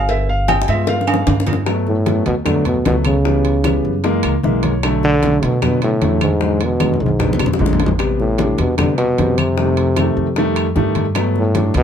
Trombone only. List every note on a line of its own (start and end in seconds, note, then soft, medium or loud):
1.88 2.24 A2 loud
2.27 2.36 B2 medium
2.46 2.65 D3 medium
2.67 2.85 B2 medium
2.87 2.95 B2 medium
3.06 4.20 C#3 medium
5.04 5.46 D3 loud
5.44 5.63 B2 loud
5.63 5.81 B2 medium
5.83 6.20 A2 medium
6.24 6.65 G#2 medium
6.64 7.04 B2 medium
7.03 7.41 G#2 medium
8.21 8.61 A2 medium
8.59 8.77 B2 loud
8.78 8.96 D3 medium
8.98 9.40 B2 loud
9.38 10.57 C3 medium
11.39 11.74 A2 medium
11.77 11.83 B2 loud